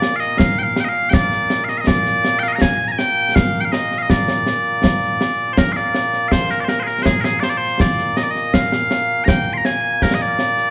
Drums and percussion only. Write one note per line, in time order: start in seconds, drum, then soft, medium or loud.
0.02 snare medium
0.39 concert bass drum medium
0.39 snare loud
0.76 snare medium
1.13 concert bass drum medium
1.13 snare loud
1.32 snare soft
1.50 snare medium
1.69 snare soft
1.87 concert bass drum medium
1.87 snare loud
2.06 snare soft
2.25 snare medium
2.43 snare soft
2.62 concert bass drum medium
2.62 snare loud
2.99 snare medium
3.36 concert bass drum medium
3.36 snare loud
3.73 snare medium
3.91 snare soft
4.10 concert bass drum medium
4.10 snare medium
4.28 snare medium
4.47 snare medium
4.84 concert bass drum medium
4.84 snare loud
5.21 snare medium
5.57 concert bass drum medium
5.57 snare loud
5.76 snare soft
5.95 snare medium
6.13 snare soft
6.32 concert bass drum medium
6.32 snare medium
6.50 snare soft
6.68 snare medium
6.87 snare soft
7.06 concert bass drum medium
7.06 snare loud
7.24 snare medium
7.43 snare medium
7.80 concert bass drum medium
7.80 snare medium
7.98 snare soft
8.17 snare medium
8.35 snare soft
8.54 concert bass drum medium
8.54 snare loud
8.72 snare medium
8.91 snare medium
9.28 concert bass drum medium
9.28 snare loud
9.65 snare medium
10.02 concert bass drum medium
10.02 snare medium
10.20 snare soft
10.39 snare medium
10.58 snare soft